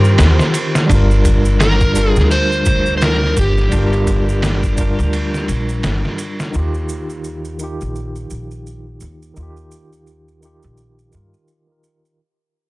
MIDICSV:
0, 0, Header, 1, 6, 480
1, 0, Start_track
1, 0, Key_signature, -2, "minor"
1, 0, Tempo, 705882
1, 608, Time_signature, 4, 2, 24, 8
1, 8632, End_track
2, 0, Start_track
2, 0, Title_t, "Electric slide guitar"
2, 0, Program_c, 0, 29
2, 0, Note_on_c, 0, 70, 90
2, 104, Note_off_c, 0, 70, 0
2, 1092, Note_on_c, 0, 70, 97
2, 1426, Note_off_c, 0, 70, 0
2, 1426, Note_on_c, 0, 68, 97
2, 1543, Note_off_c, 0, 68, 0
2, 1577, Note_on_c, 0, 72, 94
2, 2014, Note_off_c, 0, 72, 0
2, 2022, Note_on_c, 0, 72, 73
2, 2055, Note_off_c, 0, 72, 0
2, 2066, Note_on_c, 0, 70, 97
2, 2281, Note_off_c, 0, 70, 0
2, 2306, Note_on_c, 0, 67, 80
2, 3710, Note_off_c, 0, 67, 0
2, 8632, End_track
3, 0, Start_track
3, 0, Title_t, "Violin section"
3, 0, Program_c, 1, 48
3, 0, Note_on_c, 1, 60, 84
3, 0, Note_on_c, 1, 72, 83
3, 617, Note_off_c, 1, 60, 0
3, 619, Note_off_c, 1, 72, 0
3, 8632, End_track
4, 0, Start_track
4, 0, Title_t, "Tine electric piano"
4, 0, Program_c, 2, 4
4, 0, Control_c, 2, 64, 127
4, 0, Note_on_c, 2, 51, 77
4, 0, Note_on_c, 2, 63, 69
4, 0, Note_on_c, 2, 65, 70
4, 0, Note_on_c, 2, 67, 89
4, 587, Note_on_c, 2, 55, 80
4, 606, Note_on_c, 2, 62, 78
4, 615, Control_c, 2, 64, 0
4, 617, Note_off_c, 2, 51, 0
4, 619, Note_off_c, 2, 65, 0
4, 619, Note_off_c, 2, 67, 0
4, 621, Note_off_c, 2, 63, 0
4, 631, Note_on_c, 2, 65, 80
4, 648, Note_on_c, 2, 70, 96
4, 729, Control_c, 2, 64, 127
4, 1294, Note_off_c, 2, 55, 0
4, 1303, Note_off_c, 2, 62, 0
4, 1316, Note_off_c, 2, 65, 0
4, 1317, Note_on_c, 2, 55, 72
4, 1324, Note_off_c, 2, 70, 0
4, 1330, Note_on_c, 2, 62, 64
4, 1337, Note_on_c, 2, 65, 64
4, 1347, Note_on_c, 2, 70, 78
4, 1779, Note_off_c, 2, 55, 0
4, 1785, Note_off_c, 2, 62, 0
4, 1789, Note_off_c, 2, 65, 0
4, 1794, Note_off_c, 2, 70, 0
4, 2511, Note_on_c, 2, 55, 85
4, 2533, Note_on_c, 2, 62, 78
4, 2551, Note_on_c, 2, 65, 81
4, 2572, Note_on_c, 2, 70, 93
4, 3216, Note_off_c, 2, 55, 0
4, 3227, Note_off_c, 2, 62, 0
4, 3236, Note_off_c, 2, 65, 0
4, 3238, Note_on_c, 2, 55, 68
4, 3246, Note_off_c, 2, 70, 0
4, 3248, Note_on_c, 2, 62, 63
4, 3260, Note_on_c, 2, 65, 63
4, 3271, Note_on_c, 2, 70, 79
4, 3700, Note_off_c, 2, 55, 0
4, 3705, Note_off_c, 2, 62, 0
4, 3710, Note_off_c, 2, 65, 0
4, 3716, Note_off_c, 2, 70, 0
4, 4421, Note_on_c, 2, 51, 84
4, 4441, Note_on_c, 2, 63, 80
4, 4458, Control_c, 2, 64, 0
4, 4464, Note_on_c, 2, 65, 77
4, 4482, Note_on_c, 2, 67, 91
4, 4569, Control_c, 2, 64, 127
4, 5131, Note_off_c, 2, 51, 0
4, 5141, Note_off_c, 2, 63, 0
4, 5153, Note_off_c, 2, 65, 0
4, 5161, Note_off_c, 2, 67, 0
4, 5163, Note_on_c, 2, 51, 70
4, 5174, Note_on_c, 2, 63, 62
4, 5187, Note_on_c, 2, 65, 59
4, 5192, Note_on_c, 2, 67, 78
4, 5622, Note_off_c, 2, 51, 0
4, 5628, Note_off_c, 2, 63, 0
4, 5634, Note_off_c, 2, 65, 0
4, 5637, Note_off_c, 2, 67, 0
4, 6348, Note_on_c, 2, 51, 76
4, 6366, Note_on_c, 2, 63, 73
4, 6388, Note_on_c, 2, 65, 72
4, 6410, Note_on_c, 2, 67, 88
4, 7055, Note_off_c, 2, 51, 0
4, 7064, Note_off_c, 2, 63, 0
4, 7074, Note_off_c, 2, 65, 0
4, 7078, Note_on_c, 2, 51, 69
4, 7085, Note_off_c, 2, 67, 0
4, 7089, Note_on_c, 2, 63, 61
4, 7102, Note_on_c, 2, 65, 62
4, 7108, Note_on_c, 2, 67, 76
4, 7540, Note_off_c, 2, 51, 0
4, 7545, Note_off_c, 2, 63, 0
4, 7551, Note_off_c, 2, 65, 0
4, 7555, Note_off_c, 2, 67, 0
4, 7555, Note_on_c, 2, 51, 65
4, 7566, Note_on_c, 2, 63, 58
4, 7578, Note_on_c, 2, 65, 65
4, 7588, Note_on_c, 2, 70, 75
4, 7909, Note_off_c, 2, 51, 0
4, 7915, Note_off_c, 2, 63, 0
4, 7921, Note_off_c, 2, 65, 0
4, 7926, Note_off_c, 2, 70, 0
4, 7936, Note_on_c, 2, 51, 68
4, 7948, Note_on_c, 2, 63, 59
4, 7957, Note_on_c, 2, 65, 58
4, 7969, Note_on_c, 2, 70, 72
4, 8258, Note_off_c, 2, 51, 0
4, 8263, Note_off_c, 2, 63, 0
4, 8268, Note_off_c, 2, 65, 0
4, 8274, Note_off_c, 2, 70, 0
4, 8296, Control_c, 2, 64, 0
4, 8632, End_track
5, 0, Start_track
5, 0, Title_t, "Upright bass"
5, 0, Program_c, 3, 32
5, 0, Note_on_c, 3, 43, 87
5, 107, Note_off_c, 3, 43, 0
5, 132, Note_on_c, 3, 39, 75
5, 255, Note_off_c, 3, 39, 0
5, 612, Note_on_c, 3, 31, 95
5, 1445, Note_off_c, 3, 31, 0
5, 1475, Note_on_c, 3, 38, 87
5, 1792, Note_off_c, 3, 38, 0
5, 1814, Note_on_c, 3, 38, 83
5, 2272, Note_off_c, 3, 38, 0
5, 2294, Note_on_c, 3, 31, 88
5, 2508, Note_off_c, 3, 31, 0
5, 2533, Note_on_c, 3, 31, 89
5, 3365, Note_off_c, 3, 31, 0
5, 3397, Note_on_c, 3, 38, 90
5, 3713, Note_off_c, 3, 38, 0
5, 3732, Note_on_c, 3, 34, 89
5, 3946, Note_off_c, 3, 34, 0
5, 3973, Note_on_c, 3, 31, 71
5, 4096, Note_off_c, 3, 31, 0
5, 4456, Note_on_c, 3, 39, 94
5, 5287, Note_off_c, 3, 39, 0
5, 5315, Note_on_c, 3, 34, 80
5, 5632, Note_off_c, 3, 34, 0
5, 5650, Note_on_c, 3, 34, 76
5, 6110, Note_off_c, 3, 34, 0
5, 6132, Note_on_c, 3, 39, 81
5, 6346, Note_off_c, 3, 39, 0
5, 6372, Note_on_c, 3, 39, 87
5, 7205, Note_off_c, 3, 39, 0
5, 7236, Note_on_c, 3, 34, 83
5, 7552, Note_off_c, 3, 34, 0
5, 7577, Note_on_c, 3, 43, 88
5, 7698, Note_off_c, 3, 43, 0
5, 8632, End_track
6, 0, Start_track
6, 0, Title_t, "Drums"
6, 30, Note_on_c, 9, 82, 39
6, 98, Note_off_c, 9, 82, 0
6, 123, Note_on_c, 9, 51, 84
6, 127, Note_on_c, 9, 38, 109
6, 133, Note_on_c, 9, 82, 51
6, 191, Note_off_c, 9, 51, 0
6, 195, Note_off_c, 9, 38, 0
6, 201, Note_off_c, 9, 82, 0
6, 268, Note_on_c, 9, 38, 52
6, 275, Note_on_c, 9, 82, 33
6, 336, Note_off_c, 9, 38, 0
6, 343, Note_off_c, 9, 82, 0
6, 366, Note_on_c, 9, 51, 69
6, 369, Note_on_c, 9, 82, 90
6, 434, Note_off_c, 9, 51, 0
6, 437, Note_off_c, 9, 82, 0
6, 511, Note_on_c, 9, 38, 62
6, 513, Note_on_c, 9, 82, 39
6, 579, Note_off_c, 9, 38, 0
6, 581, Note_off_c, 9, 82, 0
6, 608, Note_on_c, 9, 51, 78
6, 609, Note_on_c, 9, 36, 99
6, 616, Note_on_c, 9, 82, 55
6, 676, Note_off_c, 9, 51, 0
6, 677, Note_off_c, 9, 36, 0
6, 684, Note_off_c, 9, 82, 0
6, 753, Note_on_c, 9, 82, 34
6, 821, Note_off_c, 9, 82, 0
6, 850, Note_on_c, 9, 36, 84
6, 850, Note_on_c, 9, 82, 102
6, 851, Note_on_c, 9, 51, 61
6, 918, Note_off_c, 9, 36, 0
6, 918, Note_off_c, 9, 82, 0
6, 919, Note_off_c, 9, 51, 0
6, 988, Note_on_c, 9, 82, 39
6, 1056, Note_off_c, 9, 82, 0
6, 1088, Note_on_c, 9, 51, 84
6, 1092, Note_on_c, 9, 38, 114
6, 1094, Note_on_c, 9, 82, 51
6, 1156, Note_off_c, 9, 51, 0
6, 1160, Note_off_c, 9, 38, 0
6, 1162, Note_off_c, 9, 82, 0
6, 1228, Note_on_c, 9, 82, 33
6, 1233, Note_on_c, 9, 36, 90
6, 1296, Note_off_c, 9, 82, 0
6, 1301, Note_off_c, 9, 36, 0
6, 1329, Note_on_c, 9, 82, 101
6, 1335, Note_on_c, 9, 51, 66
6, 1397, Note_off_c, 9, 82, 0
6, 1403, Note_off_c, 9, 51, 0
6, 1470, Note_on_c, 9, 82, 39
6, 1481, Note_on_c, 9, 38, 40
6, 1538, Note_off_c, 9, 82, 0
6, 1549, Note_off_c, 9, 38, 0
6, 1571, Note_on_c, 9, 82, 46
6, 1573, Note_on_c, 9, 46, 74
6, 1639, Note_off_c, 9, 82, 0
6, 1641, Note_off_c, 9, 46, 0
6, 1715, Note_on_c, 9, 82, 32
6, 1783, Note_off_c, 9, 82, 0
6, 1805, Note_on_c, 9, 82, 80
6, 1812, Note_on_c, 9, 36, 86
6, 1812, Note_on_c, 9, 51, 60
6, 1873, Note_off_c, 9, 82, 0
6, 1880, Note_off_c, 9, 36, 0
6, 1880, Note_off_c, 9, 51, 0
6, 1945, Note_on_c, 9, 82, 36
6, 2013, Note_off_c, 9, 82, 0
6, 2049, Note_on_c, 9, 82, 46
6, 2053, Note_on_c, 9, 51, 81
6, 2057, Note_on_c, 9, 38, 114
6, 2117, Note_off_c, 9, 82, 0
6, 2121, Note_off_c, 9, 51, 0
6, 2125, Note_off_c, 9, 38, 0
6, 2200, Note_on_c, 9, 38, 37
6, 2268, Note_off_c, 9, 38, 0
6, 2290, Note_on_c, 9, 82, 94
6, 2291, Note_on_c, 9, 36, 90
6, 2292, Note_on_c, 9, 51, 64
6, 2358, Note_off_c, 9, 82, 0
6, 2359, Note_off_c, 9, 36, 0
6, 2360, Note_off_c, 9, 51, 0
6, 2433, Note_on_c, 9, 82, 38
6, 2436, Note_on_c, 9, 38, 37
6, 2501, Note_off_c, 9, 82, 0
6, 2504, Note_off_c, 9, 38, 0
6, 2528, Note_on_c, 9, 51, 88
6, 2528, Note_on_c, 9, 82, 56
6, 2531, Note_on_c, 9, 36, 103
6, 2596, Note_off_c, 9, 51, 0
6, 2596, Note_off_c, 9, 82, 0
6, 2599, Note_off_c, 9, 36, 0
6, 2672, Note_on_c, 9, 51, 42
6, 2672, Note_on_c, 9, 82, 36
6, 2740, Note_off_c, 9, 51, 0
6, 2740, Note_off_c, 9, 82, 0
6, 2769, Note_on_c, 9, 51, 55
6, 2769, Note_on_c, 9, 82, 91
6, 2770, Note_on_c, 9, 36, 77
6, 2837, Note_off_c, 9, 51, 0
6, 2837, Note_off_c, 9, 82, 0
6, 2838, Note_off_c, 9, 36, 0
6, 2916, Note_on_c, 9, 82, 39
6, 2984, Note_off_c, 9, 82, 0
6, 3008, Note_on_c, 9, 51, 88
6, 3012, Note_on_c, 9, 38, 116
6, 3018, Note_on_c, 9, 82, 55
6, 3076, Note_off_c, 9, 51, 0
6, 3080, Note_off_c, 9, 38, 0
6, 3086, Note_off_c, 9, 82, 0
6, 3151, Note_on_c, 9, 36, 85
6, 3151, Note_on_c, 9, 82, 37
6, 3219, Note_off_c, 9, 36, 0
6, 3219, Note_off_c, 9, 82, 0
6, 3247, Note_on_c, 9, 82, 83
6, 3250, Note_on_c, 9, 36, 90
6, 3250, Note_on_c, 9, 51, 66
6, 3315, Note_off_c, 9, 82, 0
6, 3318, Note_off_c, 9, 36, 0
6, 3318, Note_off_c, 9, 51, 0
6, 3392, Note_on_c, 9, 51, 40
6, 3398, Note_on_c, 9, 82, 43
6, 3460, Note_off_c, 9, 51, 0
6, 3466, Note_off_c, 9, 82, 0
6, 3489, Note_on_c, 9, 51, 80
6, 3489, Note_on_c, 9, 82, 43
6, 3557, Note_off_c, 9, 51, 0
6, 3557, Note_off_c, 9, 82, 0
6, 3634, Note_on_c, 9, 38, 34
6, 3634, Note_on_c, 9, 82, 34
6, 3702, Note_off_c, 9, 38, 0
6, 3702, Note_off_c, 9, 82, 0
6, 3728, Note_on_c, 9, 51, 57
6, 3732, Note_on_c, 9, 82, 78
6, 3796, Note_off_c, 9, 51, 0
6, 3800, Note_off_c, 9, 82, 0
6, 3869, Note_on_c, 9, 82, 39
6, 3937, Note_off_c, 9, 82, 0
6, 3966, Note_on_c, 9, 51, 83
6, 3968, Note_on_c, 9, 82, 49
6, 3971, Note_on_c, 9, 38, 112
6, 4034, Note_off_c, 9, 51, 0
6, 4036, Note_off_c, 9, 82, 0
6, 4039, Note_off_c, 9, 38, 0
6, 4115, Note_on_c, 9, 38, 46
6, 4183, Note_off_c, 9, 38, 0
6, 4205, Note_on_c, 9, 51, 62
6, 4206, Note_on_c, 9, 82, 80
6, 4273, Note_off_c, 9, 51, 0
6, 4274, Note_off_c, 9, 82, 0
6, 4351, Note_on_c, 9, 82, 41
6, 4352, Note_on_c, 9, 38, 51
6, 4419, Note_off_c, 9, 82, 0
6, 4420, Note_off_c, 9, 38, 0
6, 4446, Note_on_c, 9, 82, 55
6, 4514, Note_off_c, 9, 82, 0
6, 4586, Note_on_c, 9, 82, 34
6, 4654, Note_off_c, 9, 82, 0
6, 4685, Note_on_c, 9, 82, 86
6, 4753, Note_off_c, 9, 82, 0
6, 4827, Note_on_c, 9, 82, 33
6, 4895, Note_off_c, 9, 82, 0
6, 4925, Note_on_c, 9, 82, 51
6, 4993, Note_off_c, 9, 82, 0
6, 5065, Note_on_c, 9, 82, 30
6, 5133, Note_off_c, 9, 82, 0
6, 5163, Note_on_c, 9, 82, 86
6, 5231, Note_off_c, 9, 82, 0
6, 5310, Note_on_c, 9, 82, 37
6, 5378, Note_off_c, 9, 82, 0
6, 5410, Note_on_c, 9, 82, 44
6, 5478, Note_off_c, 9, 82, 0
6, 5546, Note_on_c, 9, 82, 37
6, 5614, Note_off_c, 9, 82, 0
6, 5646, Note_on_c, 9, 82, 82
6, 5714, Note_off_c, 9, 82, 0
6, 5787, Note_on_c, 9, 82, 40
6, 5855, Note_off_c, 9, 82, 0
6, 5893, Note_on_c, 9, 82, 46
6, 5961, Note_off_c, 9, 82, 0
6, 6123, Note_on_c, 9, 82, 86
6, 6191, Note_off_c, 9, 82, 0
6, 6272, Note_on_c, 9, 82, 37
6, 6340, Note_off_c, 9, 82, 0
6, 6367, Note_on_c, 9, 82, 51
6, 6435, Note_off_c, 9, 82, 0
6, 6506, Note_on_c, 9, 82, 35
6, 6574, Note_off_c, 9, 82, 0
6, 6606, Note_on_c, 9, 82, 82
6, 6674, Note_off_c, 9, 82, 0
6, 6750, Note_on_c, 9, 82, 34
6, 6818, Note_off_c, 9, 82, 0
6, 6847, Note_on_c, 9, 82, 44
6, 6915, Note_off_c, 9, 82, 0
6, 6991, Note_on_c, 9, 82, 33
6, 7059, Note_off_c, 9, 82, 0
6, 7089, Note_on_c, 9, 82, 77
6, 7157, Note_off_c, 9, 82, 0
6, 7226, Note_on_c, 9, 82, 36
6, 7294, Note_off_c, 9, 82, 0
6, 7326, Note_on_c, 9, 82, 49
6, 7394, Note_off_c, 9, 82, 0
6, 7471, Note_on_c, 9, 82, 36
6, 7539, Note_off_c, 9, 82, 0
6, 7563, Note_on_c, 9, 82, 70
6, 7631, Note_off_c, 9, 82, 0
6, 7709, Note_on_c, 9, 82, 38
6, 7777, Note_off_c, 9, 82, 0
6, 7805, Note_on_c, 9, 82, 45
6, 7873, Note_off_c, 9, 82, 0
6, 8047, Note_on_c, 9, 82, 79
6, 8115, Note_off_c, 9, 82, 0
6, 8195, Note_on_c, 9, 82, 36
6, 8263, Note_off_c, 9, 82, 0
6, 8632, End_track
0, 0, End_of_file